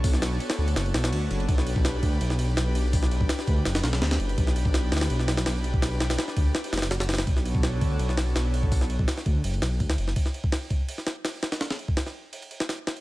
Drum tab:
RD |----x---x-x---x-x-x-x---x---x-x-|x---x---x---x---x---x---x---x---|----x---x---x---x-x-x-x-x-x-x-x-|x---x---x---xxx-x---x-x-x---x---|
HH |o-------------------------------|--------------------------------|o-------------------------------|--------------------------------|
SD |--o-o-----o-----o---o-o---------|--o-----o---------o-----o-------|--o-----o-o-----o-o-o-o-o-o-----|--o-----o---ooo---o-o-o-o-------|
BD |o-------------------------------|o-----o-----o-------------------|o-----o-----o-------------------|o-----o-----------------------o-|

RD |x---x-x-x---x-----x-xxx-x-x-xxx-|x---x---x---x---x---x---x---x---|----x---x---x---x-x-x---x-x-x---|x---x---x---x---x---x---x---x-x-|
HH |--------------------------------|--------------------------------|o-------------------------------|--------------------------------|
SD |o---o-o-o-o-----o---ooo-o-o-ooo-|--o-----o---------o-o---o-------|--o-----o-o---------o-----o---o-|--o-----o---------o-o---o---o-o-|
BD |------------o-------------------|o-----o-----o-----------------o-|o-----o-----o-----------o-------|o-----o-----o-------------------|

RD |x-x-x---x-------x-x-x---x---x-x-|
HH |--------------------------------|
SD |o-o-----o-o-----------o-o---o---|
BD |------o-------------------------|